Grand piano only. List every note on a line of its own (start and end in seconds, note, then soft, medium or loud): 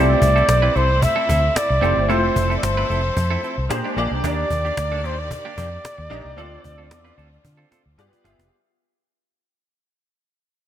0.00 0.61 A3 medium
0.00 0.61 C4 medium
0.00 0.61 E4 medium
0.00 0.62 G4 medium
0.00 0.62 C5 medium
1.81 1.99 A3 medium
1.81 1.99 C4 medium
1.81 1.99 E4 medium
1.81 1.99 G4 medium
1.81 2.00 C5 medium
2.09 2.75 A3 medium
2.09 2.76 C4 medium
2.09 2.76 E4 medium
2.09 2.76 F4 medium
2.09 2.76 C5 medium
3.69 3.91 A#3 medium
3.69 3.92 D4 medium
3.69 3.92 G4 medium
3.69 3.92 G#4 medium
3.69 3.92 C5 loud
3.97 4.14 A#3 medium
3.97 4.14 D4 medium
3.97 4.14 G4 medium
3.97 4.14 G#4 medium
3.97 4.14 D5 loud
4.23 4.90 A#3 medium
4.23 4.90 D4 medium
4.23 4.90 D#4 medium
4.23 4.90 G4 medium
4.23 4.90 D5 medium
6.10 6.27 A#3 medium
6.10 6.27 D4 medium
6.10 6.27 D#4 medium
6.10 6.28 G4 medium
6.10 6.28 D#5 loud
6.36 7.03 C4 medium
6.36 7.04 D4 medium
6.36 7.04 F4 medium
6.36 7.04 A4 medium
6.36 7.04 D5 loud
7.98 8.20 B3 medium
7.98 8.20 F4 medium
7.98 8.20 G4 medium
7.98 8.20 G#4 medium
7.98 8.20 D5 medium
8.24 8.41 B3 medium
8.24 8.42 F4 medium
8.24 8.42 G4 medium
8.24 8.42 G#4 medium
8.24 8.42 E5 medium